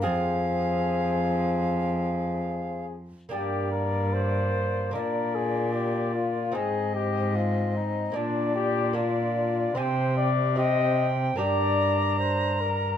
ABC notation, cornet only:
X:1
M:4/4
L:1/8
Q:1/4=74
K:Fdor
V:1 name="Cornet"
A6- A z | G B c2 B A G F | A G F E D G F2 | c d e z d2 c B |]